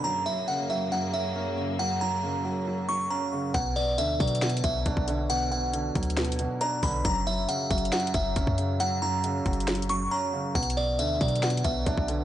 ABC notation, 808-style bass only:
X:1
M:4/4
L:1/16
Q:1/4=137
K:Bm
V:1 name="808-style bass" clef=bass
z16 | z16 | B,,,4 D,,2 B,,4 B,,,2 B,,, B,,,3- | B,,,6 D,,4- D,, z3 B,,,2 |
F,,,4 z2 F,,,2 z2 F,,,2 F,,, F,,3- | F,,6 F,,,6 z4 | B,,,4 D,,2 B,,4 B,,,2 B,,, B,,,3 |]